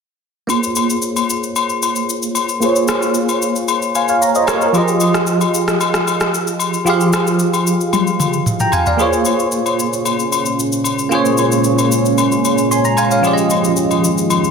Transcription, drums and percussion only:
0.49 high agogo, shaker
0.63 shaker
0.76 high agogo, shaker
0.90 shaker
1.02 shaker
1.16 high agogo, shaker
1.30 shaker
1.43 shaker
1.56 high agogo, shaker
1.70 shaker
1.83 high agogo, shaker
1.96 shaker
2.09 shaker
2.23 shaker
2.35 high agogo, shaker
2.49 shaker
2.62 high agogo, shaker
2.76 shaker
2.88 cross-stick, high agogo, shaker
3.02 shaker
3.14 shaker
3.29 high agogo, shaker
3.42 shaker
3.56 shaker
3.68 high agogo, shaker
3.82 shaker
3.95 high agogo, shaker
4.08 shaker
4.22 shaker
4.35 shaker
4.47 cross-stick, high agogo, shaker
4.61 shaker
4.74 high agogo, shaker
4.88 shaker
5.00 high agogo, shaker
5.14 cross-stick, shaker
5.27 shaker
5.41 high agogo, shaker
5.54 shaker
5.68 cross-stick, shaker
5.81 high agogo, shaker
5.94 cross-stick, shaker
6.07 high agogo, shaker
6.20 cross-stick, shaker
6.34 shaker
6.47 shaker
6.59 high agogo, shaker
6.74 shaker
6.87 high agogo, shaker
7.01 shaker
7.13 cross-stick, high agogo, shaker
7.27 shaker
7.39 shaker
7.53 high agogo, shaker
7.67 shaker
7.81 shaker
7.93 high tom, high agogo, shaker
8.07 shaker
8.20 mid tom, high agogo, shaker
8.33 shaker
8.46 mid tom, shaker
8.60 mid tom, shaker
8.72 floor tom, high agogo, shaker
8.86 floor tom, shaker
8.99 high agogo, shaker
9.13 shaker
9.25 high agogo, shaker
9.40 shaker
9.52 shaker
9.66 high agogo, shaker
9.80 shaker
9.93 shaker
10.05 high agogo, shaker
10.19 shaker
10.32 high agogo, shaker
10.46 shaker
10.60 shaker
10.72 shaker
10.84 high agogo, shaker
10.99 shaker
11.12 high agogo, shaker
11.25 shaker
11.38 high agogo, shaker
11.52 shaker
11.64 shaker
11.78 high agogo, shaker
11.92 shaker
12.05 shaker
12.18 high agogo, shaker
12.32 shaker
12.45 high agogo, shaker
12.58 shaker
12.72 shaker
12.85 shaker
12.97 high agogo, shaker
13.11 shaker
13.24 high agogo, shaker
13.38 shaker
13.50 high agogo, shaker
13.64 shaker
13.77 shaker
13.91 high agogo, shaker
14.04 shaker
14.18 shaker
14.30 high agogo, shaker
14.44 shaker

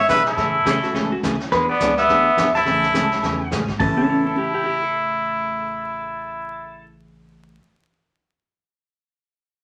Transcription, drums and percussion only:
0.09 kick, snare, hi-hat pedal
0.26 snare
0.37 brush sweep, kick, snare
0.66 kick, snare, hi-hat pedal
0.83 snare
0.95 brush sweep, kick, snare
1.23 kick, snare, hi-hat pedal
1.40 snare
1.52 brush sweep, kick, snare
1.80 kick, snare, hi-hat pedal
1.97 snare
2.09 brush sweep, kick, snare
2.37 kick, snare, hi-hat pedal
2.55 snare
2.66 brush sweep, kick, snare
2.83 snare
2.94 kick, snare, hi-hat pedal
3.11 snare
3.23 brush sweep, kick, snare
3.51 kick, snare, hi-hat pedal
3.68 kick, snare
3.80 kick, open hi-hat

